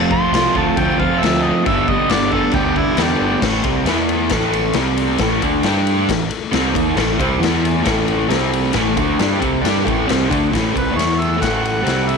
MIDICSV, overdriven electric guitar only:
0, 0, Header, 1, 2, 480
1, 0, Start_track
1, 0, Tempo, 443787
1, 1795, Time_signature, 4, 2, 24, 8
1, 13168, End_track
2, 0, Start_track
2, 0, Title_t, "Overdriven electric guitar"
2, 0, Program_c, 0, 29
2, 0, Note_on_c, 0, 53, 95
2, 0, Note_on_c, 0, 57, 91
2, 0, Note_on_c, 0, 60, 101
2, 118, Note_off_c, 0, 60, 0
2, 118, Note_on_c, 0, 65, 78
2, 131, Note_on_c, 0, 60, 78
2, 132, Note_off_c, 0, 57, 0
2, 145, Note_on_c, 0, 57, 68
2, 328, Note_off_c, 0, 53, 0
2, 341, Note_on_c, 0, 53, 77
2, 342, Note_off_c, 0, 57, 0
2, 354, Note_off_c, 0, 60, 0
2, 355, Note_on_c, 0, 57, 73
2, 356, Note_off_c, 0, 65, 0
2, 367, Note_on_c, 0, 60, 75
2, 369, Note_on_c, 0, 65, 96
2, 588, Note_off_c, 0, 65, 0
2, 601, Note_on_c, 0, 65, 83
2, 608, Note_off_c, 0, 60, 0
2, 611, Note_off_c, 0, 57, 0
2, 621, Note_on_c, 0, 60, 66
2, 624, Note_on_c, 0, 57, 64
2, 828, Note_off_c, 0, 53, 0
2, 845, Note_on_c, 0, 53, 85
2, 846, Note_off_c, 0, 57, 0
2, 849, Note_off_c, 0, 60, 0
2, 857, Note_off_c, 0, 65, 0
2, 859, Note_on_c, 0, 57, 90
2, 861, Note_on_c, 0, 60, 107
2, 870, Note_on_c, 0, 65, 100
2, 1066, Note_off_c, 0, 65, 0
2, 1079, Note_on_c, 0, 65, 82
2, 1081, Note_off_c, 0, 60, 0
2, 1094, Note_off_c, 0, 57, 0
2, 1094, Note_on_c, 0, 60, 71
2, 1107, Note_on_c, 0, 57, 58
2, 1299, Note_off_c, 0, 53, 0
2, 1312, Note_on_c, 0, 53, 83
2, 1314, Note_off_c, 0, 57, 0
2, 1327, Note_on_c, 0, 57, 82
2, 1330, Note_off_c, 0, 60, 0
2, 1341, Note_off_c, 0, 65, 0
2, 1342, Note_on_c, 0, 60, 81
2, 1354, Note_on_c, 0, 65, 90
2, 1777, Note_on_c, 0, 43, 97
2, 1779, Note_off_c, 0, 53, 0
2, 1784, Note_on_c, 0, 50, 84
2, 1787, Note_off_c, 0, 57, 0
2, 1793, Note_off_c, 0, 60, 0
2, 1797, Note_on_c, 0, 59, 106
2, 1801, Note_off_c, 0, 65, 0
2, 1803, Note_on_c, 0, 55, 105
2, 1815, Note_on_c, 0, 62, 105
2, 2020, Note_off_c, 0, 62, 0
2, 2033, Note_on_c, 0, 62, 81
2, 2035, Note_off_c, 0, 59, 0
2, 2048, Note_on_c, 0, 59, 72
2, 2052, Note_off_c, 0, 55, 0
2, 2065, Note_on_c, 0, 55, 70
2, 2252, Note_off_c, 0, 50, 0
2, 2262, Note_off_c, 0, 55, 0
2, 2265, Note_on_c, 0, 50, 74
2, 2267, Note_off_c, 0, 43, 0
2, 2275, Note_on_c, 0, 55, 78
2, 2276, Note_off_c, 0, 59, 0
2, 2284, Note_off_c, 0, 62, 0
2, 2289, Note_on_c, 0, 59, 94
2, 2297, Note_on_c, 0, 62, 84
2, 2499, Note_off_c, 0, 62, 0
2, 2512, Note_on_c, 0, 62, 79
2, 2517, Note_off_c, 0, 59, 0
2, 2527, Note_off_c, 0, 55, 0
2, 2530, Note_on_c, 0, 59, 65
2, 2540, Note_on_c, 0, 55, 65
2, 2736, Note_off_c, 0, 55, 0
2, 2738, Note_off_c, 0, 50, 0
2, 2738, Note_on_c, 0, 43, 89
2, 2740, Note_off_c, 0, 59, 0
2, 2749, Note_on_c, 0, 55, 90
2, 2751, Note_on_c, 0, 50, 102
2, 2753, Note_on_c, 0, 59, 98
2, 2759, Note_off_c, 0, 62, 0
2, 2772, Note_on_c, 0, 62, 104
2, 2963, Note_off_c, 0, 62, 0
2, 2976, Note_on_c, 0, 62, 74
2, 2984, Note_off_c, 0, 59, 0
2, 2993, Note_off_c, 0, 55, 0
2, 2997, Note_on_c, 0, 59, 76
2, 3006, Note_on_c, 0, 55, 65
2, 3201, Note_off_c, 0, 50, 0
2, 3213, Note_off_c, 0, 55, 0
2, 3214, Note_on_c, 0, 50, 77
2, 3225, Note_off_c, 0, 59, 0
2, 3226, Note_on_c, 0, 55, 82
2, 3227, Note_off_c, 0, 43, 0
2, 3238, Note_on_c, 0, 59, 82
2, 3242, Note_off_c, 0, 62, 0
2, 3255, Note_on_c, 0, 62, 79
2, 3682, Note_off_c, 0, 50, 0
2, 3686, Note_on_c, 0, 45, 95
2, 3695, Note_off_c, 0, 55, 0
2, 3697, Note_off_c, 0, 59, 0
2, 3699, Note_on_c, 0, 52, 101
2, 3701, Note_on_c, 0, 57, 93
2, 3711, Note_off_c, 0, 62, 0
2, 3931, Note_off_c, 0, 45, 0
2, 3934, Note_off_c, 0, 52, 0
2, 3936, Note_on_c, 0, 48, 99
2, 3938, Note_on_c, 0, 55, 95
2, 3940, Note_off_c, 0, 57, 0
2, 3945, Note_on_c, 0, 60, 115
2, 4179, Note_off_c, 0, 48, 0
2, 4180, Note_off_c, 0, 55, 0
2, 4183, Note_off_c, 0, 60, 0
2, 4188, Note_on_c, 0, 52, 89
2, 4199, Note_on_c, 0, 59, 105
2, 4204, Note_on_c, 0, 64, 115
2, 4655, Note_off_c, 0, 52, 0
2, 4664, Note_off_c, 0, 59, 0
2, 4667, Note_on_c, 0, 45, 86
2, 4668, Note_on_c, 0, 52, 94
2, 4670, Note_off_c, 0, 64, 0
2, 4674, Note_on_c, 0, 57, 104
2, 5139, Note_off_c, 0, 45, 0
2, 5143, Note_on_c, 0, 48, 102
2, 5145, Note_off_c, 0, 52, 0
2, 5148, Note_off_c, 0, 57, 0
2, 5153, Note_on_c, 0, 55, 94
2, 5161, Note_on_c, 0, 60, 99
2, 5615, Note_off_c, 0, 48, 0
2, 5619, Note_off_c, 0, 55, 0
2, 5619, Note_on_c, 0, 45, 90
2, 5624, Note_on_c, 0, 52, 101
2, 5626, Note_off_c, 0, 60, 0
2, 5631, Note_on_c, 0, 57, 114
2, 5860, Note_off_c, 0, 45, 0
2, 5861, Note_off_c, 0, 57, 0
2, 5862, Note_off_c, 0, 52, 0
2, 5874, Note_on_c, 0, 50, 98
2, 5874, Note_on_c, 0, 57, 99
2, 5874, Note_on_c, 0, 62, 102
2, 6095, Note_off_c, 0, 62, 0
2, 6107, Note_off_c, 0, 50, 0
2, 6107, Note_off_c, 0, 57, 0
2, 6108, Note_on_c, 0, 62, 100
2, 6114, Note_on_c, 0, 55, 93
2, 6121, Note_on_c, 0, 67, 95
2, 6584, Note_off_c, 0, 62, 0
2, 6586, Note_off_c, 0, 55, 0
2, 6590, Note_off_c, 0, 67, 0
2, 6596, Note_on_c, 0, 52, 73
2, 6597, Note_on_c, 0, 45, 62
2, 6787, Note_off_c, 0, 45, 0
2, 6787, Note_off_c, 0, 52, 0
2, 7048, Note_on_c, 0, 48, 97
2, 7057, Note_on_c, 0, 55, 117
2, 7065, Note_on_c, 0, 60, 99
2, 7287, Note_off_c, 0, 55, 0
2, 7289, Note_off_c, 0, 48, 0
2, 7292, Note_on_c, 0, 58, 90
2, 7294, Note_on_c, 0, 51, 91
2, 7295, Note_off_c, 0, 60, 0
2, 7300, Note_on_c, 0, 63, 106
2, 7528, Note_off_c, 0, 51, 0
2, 7532, Note_off_c, 0, 58, 0
2, 7532, Note_on_c, 0, 45, 90
2, 7535, Note_off_c, 0, 63, 0
2, 7536, Note_on_c, 0, 52, 110
2, 7539, Note_on_c, 0, 57, 114
2, 7769, Note_off_c, 0, 45, 0
2, 7773, Note_on_c, 0, 48, 91
2, 7775, Note_off_c, 0, 52, 0
2, 7778, Note_off_c, 0, 57, 0
2, 7779, Note_on_c, 0, 55, 109
2, 7791, Note_on_c, 0, 60, 113
2, 8005, Note_off_c, 0, 48, 0
2, 8010, Note_on_c, 0, 52, 102
2, 8015, Note_off_c, 0, 55, 0
2, 8018, Note_off_c, 0, 60, 0
2, 8019, Note_on_c, 0, 59, 98
2, 8022, Note_on_c, 0, 64, 104
2, 8471, Note_off_c, 0, 52, 0
2, 8475, Note_on_c, 0, 45, 93
2, 8486, Note_off_c, 0, 59, 0
2, 8490, Note_on_c, 0, 52, 93
2, 8494, Note_off_c, 0, 64, 0
2, 8498, Note_on_c, 0, 57, 105
2, 8957, Note_off_c, 0, 45, 0
2, 8962, Note_on_c, 0, 48, 101
2, 8964, Note_off_c, 0, 57, 0
2, 8965, Note_off_c, 0, 52, 0
2, 8968, Note_on_c, 0, 60, 112
2, 8969, Note_on_c, 0, 55, 95
2, 9446, Note_off_c, 0, 48, 0
2, 9450, Note_off_c, 0, 55, 0
2, 9450, Note_on_c, 0, 45, 85
2, 9451, Note_off_c, 0, 60, 0
2, 9454, Note_on_c, 0, 52, 101
2, 9460, Note_on_c, 0, 57, 111
2, 9686, Note_off_c, 0, 57, 0
2, 9688, Note_off_c, 0, 45, 0
2, 9692, Note_on_c, 0, 50, 101
2, 9694, Note_off_c, 0, 52, 0
2, 9699, Note_on_c, 0, 57, 93
2, 9708, Note_on_c, 0, 62, 104
2, 9931, Note_off_c, 0, 62, 0
2, 9933, Note_off_c, 0, 50, 0
2, 9935, Note_off_c, 0, 57, 0
2, 9939, Note_on_c, 0, 55, 78
2, 9944, Note_on_c, 0, 62, 103
2, 9958, Note_on_c, 0, 67, 96
2, 10155, Note_off_c, 0, 55, 0
2, 10157, Note_off_c, 0, 62, 0
2, 10157, Note_on_c, 0, 48, 97
2, 10162, Note_on_c, 0, 60, 91
2, 10168, Note_on_c, 0, 55, 90
2, 10185, Note_off_c, 0, 67, 0
2, 10387, Note_off_c, 0, 55, 0
2, 10399, Note_off_c, 0, 60, 0
2, 10400, Note_on_c, 0, 55, 102
2, 10404, Note_on_c, 0, 62, 99
2, 10405, Note_off_c, 0, 48, 0
2, 10410, Note_on_c, 0, 67, 95
2, 10645, Note_off_c, 0, 55, 0
2, 10648, Note_off_c, 0, 62, 0
2, 10650, Note_on_c, 0, 52, 90
2, 10651, Note_on_c, 0, 45, 97
2, 10652, Note_off_c, 0, 67, 0
2, 10654, Note_on_c, 0, 57, 101
2, 10888, Note_off_c, 0, 45, 0
2, 10890, Note_off_c, 0, 52, 0
2, 10892, Note_on_c, 0, 48, 93
2, 10894, Note_off_c, 0, 57, 0
2, 10895, Note_on_c, 0, 55, 105
2, 10904, Note_on_c, 0, 60, 106
2, 11123, Note_off_c, 0, 48, 0
2, 11127, Note_off_c, 0, 55, 0
2, 11127, Note_on_c, 0, 50, 87
2, 11131, Note_on_c, 0, 57, 86
2, 11137, Note_off_c, 0, 60, 0
2, 11141, Note_on_c, 0, 62, 101
2, 11357, Note_off_c, 0, 50, 0
2, 11361, Note_on_c, 0, 45, 83
2, 11364, Note_off_c, 0, 57, 0
2, 11372, Note_off_c, 0, 62, 0
2, 11373, Note_on_c, 0, 52, 88
2, 11377, Note_on_c, 0, 57, 95
2, 11596, Note_off_c, 0, 52, 0
2, 11600, Note_on_c, 0, 55, 98
2, 11601, Note_off_c, 0, 45, 0
2, 11605, Note_on_c, 0, 48, 99
2, 11613, Note_off_c, 0, 57, 0
2, 11617, Note_on_c, 0, 60, 101
2, 11828, Note_off_c, 0, 48, 0
2, 11828, Note_on_c, 0, 52, 91
2, 11835, Note_off_c, 0, 55, 0
2, 11835, Note_on_c, 0, 59, 90
2, 11842, Note_off_c, 0, 60, 0
2, 11842, Note_on_c, 0, 64, 104
2, 12298, Note_off_c, 0, 52, 0
2, 12303, Note_on_c, 0, 45, 90
2, 12306, Note_off_c, 0, 64, 0
2, 12307, Note_off_c, 0, 59, 0
2, 12310, Note_on_c, 0, 57, 92
2, 12311, Note_on_c, 0, 52, 93
2, 12788, Note_off_c, 0, 45, 0
2, 12788, Note_off_c, 0, 52, 0
2, 12792, Note_on_c, 0, 55, 95
2, 12793, Note_on_c, 0, 48, 85
2, 12799, Note_off_c, 0, 57, 0
2, 12803, Note_on_c, 0, 60, 103
2, 13168, Note_off_c, 0, 48, 0
2, 13168, Note_off_c, 0, 55, 0
2, 13168, Note_off_c, 0, 60, 0
2, 13168, End_track
0, 0, End_of_file